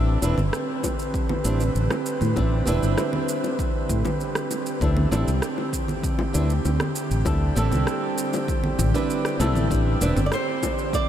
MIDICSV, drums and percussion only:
0, 0, Header, 1, 2, 480
1, 0, Start_track
1, 0, Key_signature, 0, "minor"
1, 0, Tempo, 612245
1, 1853, Time_signature, 4, 2, 24, 8
1, 8693, End_track
2, 0, Start_track
2, 0, Title_t, "Drums"
2, 174, Note_on_c, 9, 60, 42
2, 177, Note_on_c, 9, 82, 65
2, 252, Note_off_c, 9, 60, 0
2, 255, Note_off_c, 9, 82, 0
2, 295, Note_on_c, 9, 64, 70
2, 299, Note_on_c, 9, 82, 32
2, 374, Note_off_c, 9, 64, 0
2, 377, Note_off_c, 9, 82, 0
2, 416, Note_on_c, 9, 37, 74
2, 420, Note_on_c, 9, 82, 41
2, 494, Note_off_c, 9, 37, 0
2, 498, Note_off_c, 9, 82, 0
2, 654, Note_on_c, 9, 36, 56
2, 657, Note_on_c, 9, 60, 64
2, 657, Note_on_c, 9, 82, 72
2, 732, Note_off_c, 9, 36, 0
2, 736, Note_off_c, 9, 60, 0
2, 736, Note_off_c, 9, 82, 0
2, 778, Note_on_c, 9, 82, 28
2, 857, Note_off_c, 9, 82, 0
2, 894, Note_on_c, 9, 36, 110
2, 897, Note_on_c, 9, 82, 41
2, 972, Note_off_c, 9, 36, 0
2, 976, Note_off_c, 9, 82, 0
2, 1015, Note_on_c, 9, 64, 74
2, 1017, Note_on_c, 9, 60, 52
2, 1093, Note_off_c, 9, 64, 0
2, 1096, Note_off_c, 9, 60, 0
2, 1135, Note_on_c, 9, 82, 74
2, 1213, Note_off_c, 9, 82, 0
2, 1258, Note_on_c, 9, 82, 32
2, 1336, Note_off_c, 9, 82, 0
2, 1376, Note_on_c, 9, 82, 39
2, 1454, Note_off_c, 9, 82, 0
2, 1494, Note_on_c, 9, 37, 76
2, 1496, Note_on_c, 9, 60, 72
2, 1497, Note_on_c, 9, 82, 27
2, 1572, Note_off_c, 9, 37, 0
2, 1575, Note_off_c, 9, 60, 0
2, 1576, Note_off_c, 9, 82, 0
2, 1615, Note_on_c, 9, 82, 71
2, 1693, Note_off_c, 9, 82, 0
2, 1732, Note_on_c, 9, 64, 74
2, 1736, Note_on_c, 9, 82, 32
2, 1810, Note_off_c, 9, 64, 0
2, 1814, Note_off_c, 9, 82, 0
2, 1854, Note_on_c, 9, 36, 115
2, 1854, Note_on_c, 9, 60, 52
2, 1855, Note_on_c, 9, 82, 40
2, 1933, Note_off_c, 9, 36, 0
2, 1933, Note_off_c, 9, 60, 0
2, 1933, Note_off_c, 9, 82, 0
2, 2095, Note_on_c, 9, 82, 70
2, 2173, Note_off_c, 9, 82, 0
2, 2217, Note_on_c, 9, 82, 33
2, 2296, Note_off_c, 9, 82, 0
2, 2333, Note_on_c, 9, 37, 73
2, 2337, Note_on_c, 9, 60, 78
2, 2337, Note_on_c, 9, 82, 43
2, 2411, Note_off_c, 9, 37, 0
2, 2415, Note_off_c, 9, 60, 0
2, 2415, Note_off_c, 9, 82, 0
2, 2454, Note_on_c, 9, 64, 70
2, 2532, Note_off_c, 9, 64, 0
2, 2576, Note_on_c, 9, 82, 75
2, 2654, Note_off_c, 9, 82, 0
2, 2697, Note_on_c, 9, 60, 49
2, 2697, Note_on_c, 9, 82, 30
2, 2775, Note_off_c, 9, 60, 0
2, 2776, Note_off_c, 9, 82, 0
2, 2814, Note_on_c, 9, 36, 112
2, 2816, Note_on_c, 9, 82, 44
2, 2893, Note_off_c, 9, 36, 0
2, 2895, Note_off_c, 9, 82, 0
2, 3054, Note_on_c, 9, 36, 94
2, 3054, Note_on_c, 9, 82, 71
2, 3132, Note_off_c, 9, 36, 0
2, 3133, Note_off_c, 9, 82, 0
2, 3173, Note_on_c, 9, 64, 69
2, 3176, Note_on_c, 9, 82, 32
2, 3177, Note_on_c, 9, 60, 67
2, 3251, Note_off_c, 9, 64, 0
2, 3255, Note_off_c, 9, 82, 0
2, 3256, Note_off_c, 9, 60, 0
2, 3295, Note_on_c, 9, 82, 39
2, 3374, Note_off_c, 9, 82, 0
2, 3413, Note_on_c, 9, 37, 77
2, 3417, Note_on_c, 9, 82, 30
2, 3492, Note_off_c, 9, 37, 0
2, 3495, Note_off_c, 9, 82, 0
2, 3534, Note_on_c, 9, 60, 47
2, 3535, Note_on_c, 9, 82, 71
2, 3612, Note_off_c, 9, 60, 0
2, 3614, Note_off_c, 9, 82, 0
2, 3656, Note_on_c, 9, 82, 32
2, 3734, Note_off_c, 9, 82, 0
2, 3773, Note_on_c, 9, 36, 118
2, 3776, Note_on_c, 9, 82, 41
2, 3851, Note_off_c, 9, 36, 0
2, 3855, Note_off_c, 9, 82, 0
2, 3893, Note_on_c, 9, 64, 74
2, 3972, Note_off_c, 9, 64, 0
2, 4016, Note_on_c, 9, 82, 69
2, 4018, Note_on_c, 9, 60, 76
2, 4094, Note_off_c, 9, 82, 0
2, 4097, Note_off_c, 9, 60, 0
2, 4139, Note_on_c, 9, 82, 35
2, 4217, Note_off_c, 9, 82, 0
2, 4251, Note_on_c, 9, 37, 71
2, 4254, Note_on_c, 9, 82, 44
2, 4329, Note_off_c, 9, 37, 0
2, 4333, Note_off_c, 9, 82, 0
2, 4374, Note_on_c, 9, 60, 50
2, 4452, Note_off_c, 9, 60, 0
2, 4492, Note_on_c, 9, 36, 58
2, 4495, Note_on_c, 9, 82, 77
2, 4570, Note_off_c, 9, 36, 0
2, 4574, Note_off_c, 9, 82, 0
2, 4613, Note_on_c, 9, 64, 69
2, 4616, Note_on_c, 9, 82, 31
2, 4691, Note_off_c, 9, 64, 0
2, 4695, Note_off_c, 9, 82, 0
2, 4731, Note_on_c, 9, 36, 113
2, 4734, Note_on_c, 9, 82, 41
2, 4810, Note_off_c, 9, 36, 0
2, 4813, Note_off_c, 9, 82, 0
2, 4850, Note_on_c, 9, 60, 74
2, 4929, Note_off_c, 9, 60, 0
2, 4974, Note_on_c, 9, 82, 73
2, 5053, Note_off_c, 9, 82, 0
2, 5095, Note_on_c, 9, 82, 33
2, 5173, Note_off_c, 9, 82, 0
2, 5214, Note_on_c, 9, 82, 41
2, 5215, Note_on_c, 9, 60, 55
2, 5292, Note_off_c, 9, 82, 0
2, 5294, Note_off_c, 9, 60, 0
2, 5331, Note_on_c, 9, 37, 80
2, 5331, Note_on_c, 9, 64, 68
2, 5335, Note_on_c, 9, 82, 32
2, 5409, Note_off_c, 9, 37, 0
2, 5409, Note_off_c, 9, 64, 0
2, 5413, Note_off_c, 9, 82, 0
2, 5453, Note_on_c, 9, 82, 79
2, 5531, Note_off_c, 9, 82, 0
2, 5575, Note_on_c, 9, 82, 32
2, 5654, Note_off_c, 9, 82, 0
2, 5688, Note_on_c, 9, 60, 68
2, 5690, Note_on_c, 9, 36, 116
2, 5693, Note_on_c, 9, 82, 43
2, 5766, Note_off_c, 9, 60, 0
2, 5769, Note_off_c, 9, 36, 0
2, 5772, Note_off_c, 9, 82, 0
2, 5932, Note_on_c, 9, 82, 73
2, 6010, Note_off_c, 9, 82, 0
2, 6050, Note_on_c, 9, 64, 70
2, 6053, Note_on_c, 9, 82, 34
2, 6056, Note_on_c, 9, 60, 52
2, 6128, Note_off_c, 9, 64, 0
2, 6132, Note_off_c, 9, 82, 0
2, 6134, Note_off_c, 9, 60, 0
2, 6170, Note_on_c, 9, 37, 71
2, 6173, Note_on_c, 9, 82, 41
2, 6248, Note_off_c, 9, 37, 0
2, 6252, Note_off_c, 9, 82, 0
2, 6413, Note_on_c, 9, 82, 77
2, 6491, Note_off_c, 9, 82, 0
2, 6533, Note_on_c, 9, 82, 33
2, 6537, Note_on_c, 9, 60, 71
2, 6612, Note_off_c, 9, 82, 0
2, 6615, Note_off_c, 9, 60, 0
2, 6651, Note_on_c, 9, 36, 112
2, 6653, Note_on_c, 9, 82, 42
2, 6729, Note_off_c, 9, 36, 0
2, 6732, Note_off_c, 9, 82, 0
2, 6771, Note_on_c, 9, 64, 69
2, 6849, Note_off_c, 9, 64, 0
2, 6890, Note_on_c, 9, 36, 105
2, 6891, Note_on_c, 9, 60, 53
2, 6893, Note_on_c, 9, 82, 76
2, 6969, Note_off_c, 9, 36, 0
2, 6969, Note_off_c, 9, 60, 0
2, 6972, Note_off_c, 9, 82, 0
2, 7016, Note_on_c, 9, 82, 32
2, 7095, Note_off_c, 9, 82, 0
2, 7135, Note_on_c, 9, 82, 40
2, 7213, Note_off_c, 9, 82, 0
2, 7251, Note_on_c, 9, 37, 69
2, 7255, Note_on_c, 9, 82, 29
2, 7330, Note_off_c, 9, 37, 0
2, 7333, Note_off_c, 9, 82, 0
2, 7372, Note_on_c, 9, 82, 69
2, 7377, Note_on_c, 9, 60, 80
2, 7451, Note_off_c, 9, 82, 0
2, 7455, Note_off_c, 9, 60, 0
2, 7491, Note_on_c, 9, 64, 71
2, 7495, Note_on_c, 9, 82, 33
2, 7570, Note_off_c, 9, 64, 0
2, 7573, Note_off_c, 9, 82, 0
2, 7611, Note_on_c, 9, 36, 113
2, 7614, Note_on_c, 9, 82, 41
2, 7689, Note_off_c, 9, 36, 0
2, 7692, Note_off_c, 9, 82, 0
2, 7852, Note_on_c, 9, 82, 73
2, 7858, Note_on_c, 9, 60, 51
2, 7930, Note_off_c, 9, 82, 0
2, 7936, Note_off_c, 9, 60, 0
2, 7970, Note_on_c, 9, 64, 72
2, 7974, Note_on_c, 9, 82, 32
2, 8048, Note_off_c, 9, 64, 0
2, 8052, Note_off_c, 9, 82, 0
2, 8089, Note_on_c, 9, 37, 76
2, 8092, Note_on_c, 9, 82, 41
2, 8167, Note_off_c, 9, 37, 0
2, 8171, Note_off_c, 9, 82, 0
2, 8331, Note_on_c, 9, 36, 55
2, 8333, Note_on_c, 9, 82, 73
2, 8335, Note_on_c, 9, 60, 76
2, 8410, Note_off_c, 9, 36, 0
2, 8412, Note_off_c, 9, 82, 0
2, 8413, Note_off_c, 9, 60, 0
2, 8455, Note_on_c, 9, 82, 32
2, 8533, Note_off_c, 9, 82, 0
2, 8571, Note_on_c, 9, 36, 115
2, 8575, Note_on_c, 9, 82, 40
2, 8649, Note_off_c, 9, 36, 0
2, 8654, Note_off_c, 9, 82, 0
2, 8693, End_track
0, 0, End_of_file